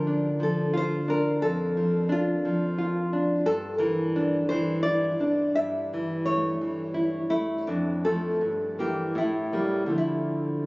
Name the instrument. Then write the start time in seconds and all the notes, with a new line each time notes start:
nylon-string guitar
Already playing: D3 F3 A#4
0.07 D4
0.40 F3 A4
0.74 F4 C5
1.08 D4 A#4
1.42 F2 A4
1.77 F3
2.09 D4 F4
2.45 F3
2.79 F4
3.13 D4
3.46 G2 A4
3.78 E3 A#4
4.16 D4
4.49 E3 C5
4.83 E4 D5
5.20 D4
5.55 G2 E5
5.94 E3
6.26 A3 C#5
6.61 E3
6.94 E4
7.30 A3 E4
7.67 F2 D4
8.05 F3 A3 A4
8.41 G2
8.79 E3 A#3 G4
9.15 A2 E4
9.53 G3 A#3
9.86 D3 F3 A3
9.98 E4